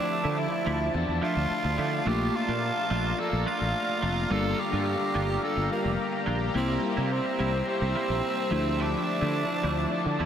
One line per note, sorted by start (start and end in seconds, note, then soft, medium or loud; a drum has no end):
0.00 0.94 D3 medium
0.00 1.18 F3 medium
0.00 2.04 F3 medium
0.00 0.95 A3 medium
0.00 1.19 A3 medium
0.00 0.41 D4 loud
0.00 0.97 D4 medium
0.00 1.19 D4 medium
0.00 1.20 E4 medium
0.00 6.51 D5 medium
0.00 2.02 E5 medium
0.00 2.04 A5 medium
0.10 muted clean electric guitar stroke soft
0.24 0.45 D3 loud
0.24 0.36 F3 soft
0.24 0.37 A3 medium
0.24 0.37 E4 medium
0.38 0.96 E4 loud
0.38 muted clean electric guitar stroke soft
0.52 muted clean electric guitar stroke soft
0.66 0.87 D2 medium
0.66 0.86 F3 medium
0.66 0.80 A3 medium
0.66 0.79 E4 medium
0.80 muted clean electric guitar stroke soft
0.94 1.05 E2 loud
0.94 2.07 D3 medium
0.94 2.09 A3 medium
0.94 4.47 D4 medium
0.94 muted clean electric guitar stroke soft
1.08 1.19 E2 medium
1.08 muted clean electric guitar stroke soft
1.22 1.42 F3 medium
1.22 2.06 F3 soft
1.22 2.04 A3 soft
1.22 1.36 A3 medium
1.22 2.06 D4 soft
1.22 1.35 E4 medium
1.22 2.10 F4 loud
1.22 2.07 E5 soft
1.36 1.47 D2 medium
1.36 muted clean electric guitar stroke medium
1.50 muted fretless electric bass stroke soft
1.64 1.75 D2 medium
1.64 muted clean electric guitar stroke soft
1.78 1.99 D3 medium
1.78 1.98 F3 medium
1.78 1.92 A3 medium
1.78 1.91 E4 medium
1.92 muted clean electric guitar stroke soft
2.05 2.27 A#1 loud
2.05 3.17 A#2 medium
2.05 3.19 F3 medium
2.05 4.26 A3 medium
2.05 2.32 A3 loud
2.05 4.27 A#3 medium
2.05 3.21 A#3 medium
2.05 2.32 D4 loud
2.05 4.27 D4 medium
2.05 2.33 F4 loud
2.05 4.27 F4 medium
2.05 2.38 G4 loud
2.05 6.51 F5 medium
2.05 4.29 A5 medium
2.05 8.47 A#5 medium
2.34 3.21 F4 loud
2.34 muted clean electric guitar stroke soft
2.48 2.69 A#2 medium
2.48 2.61 A3 medium
2.48 2.62 D4 medium
2.48 2.62 F4 medium
2.63 muted clean electric guitar stroke soft
2.77 muted clean electric guitar stroke soft
2.90 3.12 A#1 medium
2.90 3.10 A3 medium
2.90 3.04 D4 medium
2.90 3.03 F4 medium
3.05 muted clean electric guitar stroke soft
3.18 4.30 A#2 medium
3.18 4.31 F3 medium
3.18 4.33 A#3 medium
3.18 3.47 A4 loud
3.18 muted clean electric guitar stroke soft
3.32 3.43 A#1 medium
3.32 muted clean electric guitar stroke soft
3.46 3.66 A3 medium
3.46 3.60 D4 medium
3.46 3.59 F4 medium
3.46 4.34 F4 loud
3.60 3.71 A1 medium
3.60 muted clean electric guitar stroke soft
3.88 muted clean electric guitar stroke soft
4.02 4.24 F1 medium
4.02 4.22 A3 medium
4.02 4.16 D4 medium
4.02 4.15 F4 loud
4.16 muted clean electric guitar stroke medium
4.30 4.52 G1 loud
4.30 5.41 G2 medium
4.30 5.43 D3 medium
4.30 6.51 G3 medium
4.30 5.45 G3 medium
4.30 4.56 A#3 medium
4.30 6.51 A#3 medium
4.30 4.57 D4 medium
4.30 6.51 D4 medium
4.30 4.57 F4 loud
4.30 6.52 F4 medium
4.30 8.47 G4 medium
4.30 4.62 A4 loud
4.59 5.46 G4 loud
4.59 muted clean electric guitar stroke soft
4.72 4.94 G2 loud
4.72 4.86 A#3 medium
4.72 4.86 D4 medium
4.72 4.86 F4 medium
4.87 muted clean electric guitar stroke soft
5.00 muted clean electric guitar stroke medium
5.14 5.36 G1 medium
5.14 5.34 A#3 medium
5.14 5.28 D4 loud
5.14 5.27 F4 loud
5.29 muted clean electric guitar stroke medium
5.42 6.55 G2 medium
5.42 6.54 D3 medium
5.42 6.55 G3 medium
5.42 5.72 A4 medium
5.42 muted clean electric guitar stroke soft
5.56 5.67 G1 medium
5.56 muted clean electric guitar stroke medium
5.73 6.25 A#3 medium
5.85 5.96 F1 medium
5.85 muted clean electric guitar stroke soft
6.12 muted clean electric guitar stroke soft
6.26 6.48 A#1 medium
6.26 6.46 A#3 medium
6.26 6.40 D4 medium
6.26 6.39 F4 loud
6.41 muted clean electric guitar stroke soft
6.54 6.76 C2 loud
6.54 7.66 C3 medium
6.54 8.47 G3 medium
6.54 6.80 G3 loud
6.54 7.66 G3 medium
6.54 8.47 A#3 medium
6.54 6.81 A#3 medium
6.54 8.48 C4 medium
6.54 6.86 C4 medium
6.54 7.67 C4 medium
6.54 6.81 E4 loud
6.54 8.48 E4 medium
6.54 8.49 C5 medium
6.54 10.26 E5 medium
6.83 7.15 A#3 medium
6.83 muted clean electric guitar stroke soft
6.97 7.18 C3 loud
6.97 7.10 G3 medium
6.97 7.10 A#3 medium
6.97 7.11 E4 medium
7.11 7.68 C4 medium
7.11 muted clean electric guitar stroke medium
7.25 muted clean electric guitar stroke soft
7.39 7.60 C2 medium
7.39 7.59 G3 medium
7.39 7.53 A#3 loud
7.39 7.52 E4 medium
7.53 muted clean electric guitar stroke soft
7.67 8.51 C3 medium
7.67 8.51 G3 medium
7.67 8.50 C4 medium
7.67 8.83 C4 loud
7.67 muted clean electric guitar stroke medium
7.81 7.92 C2 loud
7.81 muted clean electric guitar stroke soft
7.95 8.15 G3 medium
7.95 8.09 A#3 medium
7.95 8.08 E4 medium
8.09 8.20 A#1 medium
8.09 muted clean electric guitar stroke medium
8.37 muted clean electric guitar stroke soft
8.50 8.94 D2 medium
8.50 9.91 D3 medium
8.50 10.26 F3 medium
8.50 8.71 F3 medium
8.50 10.26 F3 medium
8.50 10.26 A3 medium
8.50 8.65 A3 medium
8.50 9.09 A3 medium
8.50 9.07 D4 medium
8.50 10.26 D4 medium
8.50 8.64 E4 loud
8.50 10.26 E4 medium
8.50 10.26 D5 medium
8.50 10.26 A5 medium
8.65 muted clean electric guitar stroke soft
8.79 9.05 F3 medium
8.79 9.05 A3 medium
8.79 10.26 D4 loud
8.79 9.06 E4 loud
9.07 9.92 A3 soft
9.07 9.92 D4 medium
9.07 muted clean electric guitar stroke soft
9.21 9.43 D3 medium
9.21 9.34 F3 medium
9.21 9.35 A3 medium
9.21 9.35 E4 medium
9.35 muted clean electric guitar stroke soft
9.49 muted clean electric guitar stroke soft
9.63 9.85 D2 medium
9.63 9.83 F3 medium
9.63 9.77 A3 medium
9.63 9.76 E4 medium
9.77 muted clean electric guitar stroke soft
9.91 10.26 D3 medium
9.91 10.26 A3 loud
9.91 10.26 D4 loud
9.91 muted clean electric guitar stroke medium
10.05 10.16 D3 loud
10.05 muted clean electric guitar stroke soft
10.19 10.26 E2 medium
10.19 10.26 F3 medium
10.19 10.26 A3 medium
10.19 10.26 E4 loud